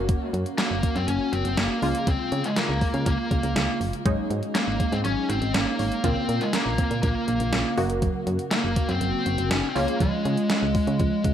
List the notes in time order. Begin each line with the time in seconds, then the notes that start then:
Already playing: F#1 A#3 C#4 F#4
0.09 kick, closed hi-hat
0.33 F#2, closed hi-hat
0.46 closed hi-hat
0.58 A#3, snare, closed hi-hat
0.71 F#1
0.83 kick, closed hi-hat
0.96 F#2 C4, closed hi-hat
1.08 F#1 C#4, closed hi-hat
1.33 F#1 C4, closed hi-hat
1.45 F#1, closed hi-hat
1.57 F#1 A#3, snare, closed hi-hat
1.82 C#2 C#3 G#3 F4, open hi-hat
1.95 closed hi-hat
2.07 C#2 C4, kick, closed hi-hat
2.32 C#3, closed hi-hat
2.44 G#3, closed hi-hat
2.56 A#3, snare, closed hi-hat
2.69 C#2
2.81 kick, open hi-hat
2.94 C#3, closed hi-hat
3.06 C#2 A#3, kick, closed hi-hat
3.31 C#2, kick, closed hi-hat
3.43 C#2, closed hi-hat
3.56 C#2, snare, closed hi-hat
3.81 F#1, open hi-hat
3.93 closed hi-hat
4.06 G#1 F#3 G#3 C#4 D#4, kick, closed hi-hat
4.30 G#2 F#4, closed hi-hat
4.43 closed hi-hat
4.55 A#3 C#4, snare, closed hi-hat
4.68 G#1
4.80 G#3, kick, closed hi-hat
4.92 G#2 C4, closed hi-hat
5.05 G#1 F#3 C#4, closed hi-hat
5.29 G#1 C4 F#4, closed hi-hat
5.42 G#1, closed hi-hat
5.54 G#1 A#3 C#4, snare, closed hi-hat
5.79 G#1 C#5, open hi-hat
5.92 closed hi-hat
6.04 A#1 C#3 A#3 C4 F4, kick, closed hi-hat
6.29 A#2 A#4, closed hi-hat
6.41 G#3, closed hi-hat
6.53 A#3 C#4, snare, closed hi-hat
6.66 A#1
6.78 C4, kick, closed hi-hat
6.91 A#2, closed hi-hat
7.03 A#1 A#3, kick, closed hi-hat
7.28 A#1 A#4, closed hi-hat
7.40 A#1, closed hi-hat
7.52 A#1 C#4, snare, closed hi-hat
7.77 F#1 C#3 A#3 F#4 D#5, open hi-hat
7.90 closed hi-hat
8.02 F#3, kick, closed hi-hat
8.27 F#2 F#4, closed hi-hat
8.39 closed hi-hat
8.51 A#3 D#4, snare, closed hi-hat
8.64 F#1
8.76 A#3, kick, closed hi-hat
8.89 F#2 C4, closed hi-hat
9.01 F#1 F#3, closed hi-hat
9.26 F#1 F#4, closed hi-hat
9.38 F#1, closed hi-hat
9.51 F#1 C#4 D#4, snare, closed hi-hat
9.70 C4
9.75 C#2 G#3 A#3 C#4 F4 C#5, open hi-hat
9.88 closed hi-hat
10.00 C#2 F3 G#3, kick, closed hi-hat
10.25 C#3 F4, closed hi-hat
10.37 closed hi-hat
10.50 C#4, snare, closed hi-hat
10.63 C#2
10.75 G#3, kick, open hi-hat
10.87 C#3, closed hi-hat
11.00 C#2 F3, kick, closed hi-hat
11.24 C#2 F4, kick, closed hi-hat